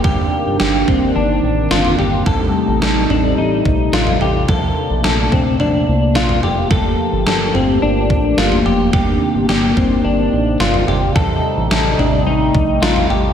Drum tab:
SD |----o-------o---|----o-------o---|----o-------o---|----o-------o---|
FT |o-----o------oo-|o-----o------oo-|o-----o-o----oo-|o-----o------oo-|
BD |o-----o---------|o---------o-----|o-----o---------|o---------o-----|

SD |----o-------o---|----o-------o---|
FT |o-----o------oo-|o-----o------oo-|
BD |o-----o---------|o---------o-----|